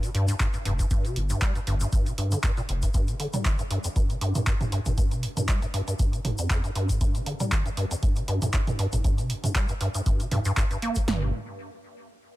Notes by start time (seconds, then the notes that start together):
0.03 C3, closed hi-hat, shaker
0.14 G2, open hi-hat
0.28 G2, closed hi-hat, shaker
0.40 G2, kick, clap, closed hi-hat, shaker
0.53 G2, closed hi-hat, shaker
0.65 F1 G2, open hi-hat
0.79 G2, kick, closed hi-hat, shaker
0.91 G2, kick, closed hi-hat, shaker
1.05 C3, closed hi-hat, shaker
1.16 G1 G2, open hi-hat
1.30 G2, closed hi-hat, shaker
1.41 G3, kick, clap, closed hi-hat, shaker
1.55 G2, closed hi-hat, shaker
1.67 G1 G2, open hi-hat
1.80 G2, closed hi-hat, shaker
1.93 G2, kick, closed hi-hat, shaker
2.06 C3, closed hi-hat, shaker
2.18 G2, open hi-hat
2.32 D3, closed hi-hat, shaker
2.43 G2, kick, clap, closed hi-hat, shaker
2.57 A#2, closed hi-hat, shaker
2.69 F1 G1, open hi-hat
2.82 G2, kick, closed hi-hat, shaker
2.94 G2, kick, closed hi-hat, shaker
3.08 C3, closed hi-hat, shaker
3.20 D3, open hi-hat
3.33 G3, closed hi-hat, mid tom, shaker
3.45 D3, kick, clap, closed hi-hat, shaker
3.59 G2, closed hi-hat, shaker
3.71 G2, open hi-hat
3.84 F2, closed hi-hat, shaker
3.96 G2, kick, closed hi-hat, shaker
4.10 C3, closed hi-hat, shaker
4.21 G2, open hi-hat
4.35 G2, closed hi-hat, mid tom, shaker
4.46 G2, kick, clap, closed hi-hat, shaker
4.60 G2, closed hi-hat, mid tom, shaker
4.72 G2, open hi-hat
4.86 G2, kick, closed hi-hat, mid tom, shaker
4.97 G2, kick, closed hi-hat, shaker
5.11 C3, closed hi-hat, shaker
5.23 G2, open hi-hat
5.37 G2, closed hi-hat, mid tom, shaker
5.48 G3, kick, clap, closed hi-hat, shaker
5.62 G2, closed hi-hat, shaker
5.74 G2, open hi-hat
5.88 G2, closed hi-hat, shaker
5.99 G2, kick, closed hi-hat, shaker
6.13 C3, closed hi-hat, shaker
6.25 G1, mid tom, open hi-hat
6.38 F2, closed hi-hat, shaker
6.50 F2, kick, clap, closed hi-hat, shaker
6.64 G2, closed hi-hat, shaker
6.75 G2, open hi-hat
6.89 G#2, kick, closed hi-hat, shaker
7.01 G2, kick, closed hi-hat, shaker
7.15 C3, closed hi-hat, shaker
7.26 D3, open hi-hat
7.40 G3, closed hi-hat, mid tom, shaker
7.52 D3, kick, clap, closed hi-hat, shaker
7.66 G2, closed hi-hat, shaker
7.77 G2, open hi-hat
7.91 F2, closed hi-hat, shaker
8.03 G2, kick, closed hi-hat, shaker
8.16 C3, closed hi-hat, shaker
8.28 G2, open hi-hat
8.42 G2, closed hi-hat, mid tom, shaker
8.53 G2, kick, clap, closed hi-hat, shaker
8.67 G2, closed hi-hat, mid tom, shaker
8.79 G2, open hi-hat
8.93 G2, kick, closed hi-hat, mid tom, shaker
9.04 G2, kick, closed hi-hat, shaker
9.18 C3, closed hi-hat, shaker
9.30 G2, open hi-hat
9.44 G2, closed hi-hat, mid tom, shaker
9.55 G3, kick, clap, closed hi-hat, shaker
9.68 G2, closed hi-hat, shaker
9.81 G2, open hi-hat
9.94 G2, closed hi-hat, shaker
10.06 G2, kick, closed hi-hat, shaker
10.20 C3, closed hi-hat, shaker
10.31 G2, mid tom, open hi-hat
10.45 G2, closed hi-hat, shaker
10.57 G2, kick, clap, open hi-hat, shaker
10.71 G2, closed hi-hat, shaker
10.82 A#3, open hi-hat
10.95 C3, kick, closed hi-hat, shaker
11.08 G1 G2, snare, floor tom